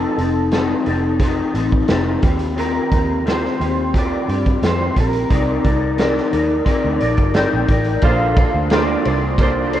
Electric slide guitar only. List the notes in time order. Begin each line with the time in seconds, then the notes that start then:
Already playing: A4
1.23 G4
2.60 A#4
3.29 C5
3.99 D5
4.66 C5
5.00 A#4
7.02 D5
7.36 G5
8.05 F5
8.74 D5
9.43 D5